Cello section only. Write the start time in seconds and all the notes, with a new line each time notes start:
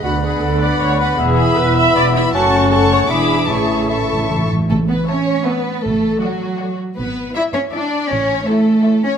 0.04 D2
0.42 D2
0.81 D2
1.20 E2
1.58 E2
1.97 E2
2.34 F#2
3.10 E2
3.49 A2
4.70 A3
4.90 B3
5.08 C#4
5.47 B3
5.85 A3
6.22 F#3
6.98 B3
7.35 E4
7.54 C#4
7.73 D4
8.10 C#4
8.47 A3
9.04 C#4